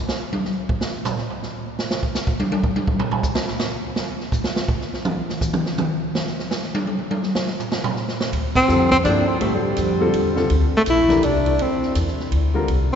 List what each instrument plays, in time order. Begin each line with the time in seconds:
0.09 snare
0.33 high tom
0.45 snare
0.69 kick
0.81 snare
1.05 floor tom, hi-hat pedal
1.18 snare
1.30 floor tom
1.43 snare
1.79 snare
1.91 snare
2.03 kick
2.15 snare, hi-hat pedal
2.27 kick
2.40 high tom
2.52 high tom
2.63 kick
2.76 high tom
2.88 kick
2.99 floor tom
3.11 floor tom
3.23 kick, hi-hat pedal
3.35 snare
3.48 snare
3.60 snare
3.96 snare
4.20 snare
4.32 kick, hi-hat pedal
4.44 snare
4.56 snare
4.68 kick
4.81 snare
4.94 snare
5.05 mid tom
5.29 snare
5.41 kick, hi-hat pedal
5.53 mid tom
5.66 snare
5.78 mid tom
6.15 snare
6.27 snare
6.39 snare
6.51 snare, hi-hat pedal
6.63 snare
6.75 high tom
6.87 high tom
6.99 high tom
7.11 high tom
7.23 snare
7.35 snare
7.47 snare
7.60 floor tom, hi-hat pedal
7.72 snare
7.84 floor tom
7.96 snare
8.08 snare
8.20 snare
8.32 upright bass D2, ride
8.55 tenor saxophone C4, kick, crash
8.68 upright bass F2, grand piano D3 G3 C4 F4 A4, hi-hat pedal
8.91 tenor saxophone C4, kick, ride
9.04 upright bass G2, grand piano F3 A#3 E4 A4 C5, tenor saxophone D4, hi-hat pedal, ride
9.27 tenor saxophone C4
9.40 upright bass A2, grand piano D3 G3 C4 F4 A4, tenor saxophone A3, ride
9.55 tenor saxophone F#3
9.63 tenor saxophone G3
9.76 upright bass F2, hi-hat pedal, ride
10.00 grand piano D3 G3 C4 F4 A4
10.14 upright bass E2, ride
10.35 grand piano D3 G3 C4 F4 A4, snare
10.50 upright bass D2, ride
10.74 tenor saxophone A3, muted upright bass stroke
10.86 upright bass A#1, tenor saxophone E4, hi-hat pedal, ride
11.08 grand piano E3 A3 D4 G4 A#4, snare, ride
11.23 upright bass C2, tenor saxophone D4, hi-hat pedal, ride
11.46 ride
11.59 upright bass D2, tenor saxophone C4, ride
11.83 snare
11.95 upright bass E2, hi-hat pedal, ride
12.08 snare
12.18 muted upright bass stroke, snare
12.32 upright bass D2, ride
12.54 grand piano D3 G3 C4 F4 A#4
12.68 upright bass C2, ride